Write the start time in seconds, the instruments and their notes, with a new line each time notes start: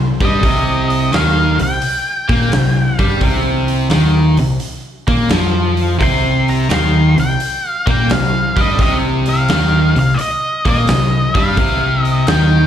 Already playing: picked electric bass C2, overdriven electric guitar C3
0.20 picked electric bass G2, overdriven electric guitar G3, kick, open hi-hat
0.25 lead electric guitar D#5
0.43 picked electric bass C2, overdriven electric guitar C3, kick, open hi-hat
0.90 open hi-hat
1.13 picked electric bass D#2, overdriven electric guitar D#3, lead electric guitar F5, snare, open hi-hat
1.59 picked electric bass C2, overdriven electric guitar C3, lead electric guitar G5, open hi-hat
1.82 open hi-hat
2.29 picked electric bass A#2, overdriven electric guitar A#3, kick, open hi-hat
2.52 picked electric bass C2, overdriven electric guitar C3, snare, open hi-hat
2.94 lead electric guitar F5
2.99 picked electric bass G2, overdriven electric guitar G3, kick, open hi-hat
3.21 picked electric bass C2, overdriven electric guitar C3, kick, open hi-hat
3.68 open hi-hat
3.90 picked electric bass D#2, overdriven electric guitar D#3, snare, open hi-hat
4.37 picked electric bass C2, overdriven electric guitar C3, open hi-hat
4.60 open hi-hat
5.07 picked electric bass A#2, overdriven electric guitar A#3, kick, open hi-hat
5.29 picked electric bass F2, overdriven electric guitar F3, snare, open hi-hat
5.77 open hi-hat
5.99 picked electric bass C2, overdriven electric guitar C3, lead electric guitar C6, kick, open hi-hat
6.48 lead electric guitar A#5, open hi-hat
6.70 picked electric bass D#2, overdriven electric guitar D#3, lead electric guitar C6, snare, open hi-hat
7.17 picked electric bass C2, overdriven electric guitar C3, lead electric guitar G5, open hi-hat
7.40 open hi-hat
7.68 lead electric guitar F5
7.87 picked electric bass A#2, overdriven electric guitar A#3, lead electric guitar G5, kick, open hi-hat
8.09 picked electric bass C2, overdriven electric guitar C3, lead electric guitar F5, snare, open hi-hat
8.57 picked electric bass G2, overdriven electric guitar G3, kick, open hi-hat
8.61 lead electric guitar D#5
8.79 picked electric bass C2, overdriven electric guitar C3, lead electric guitar D#5, kick, open hi-hat
9.26 lead electric guitar F5, open hi-hat
9.48 picked electric bass D#2, overdriven electric guitar D#3, snare, open hi-hat
9.95 picked electric bass C2, overdriven electric guitar C3, lead electric guitar F5, open hi-hat
10.14 lead electric guitar D5
10.19 lead electric guitar D#5, open hi-hat
10.65 picked electric bass A#2, overdriven electric guitar A#3, lead electric guitar D#5, kick, open hi-hat
10.87 picked electric bass C2, overdriven electric guitar C3, snare, open hi-hat
11.35 picked electric bass G2, overdriven electric guitar G3, lead electric guitar F5, kick, open hi-hat
11.57 picked electric bass C2, overdriven electric guitar C3, kick, open hi-hat
12.04 lead electric guitar D#5, open hi-hat
12.27 picked electric bass D#2, overdriven electric guitar D#3, lead electric guitar G5, snare, open hi-hat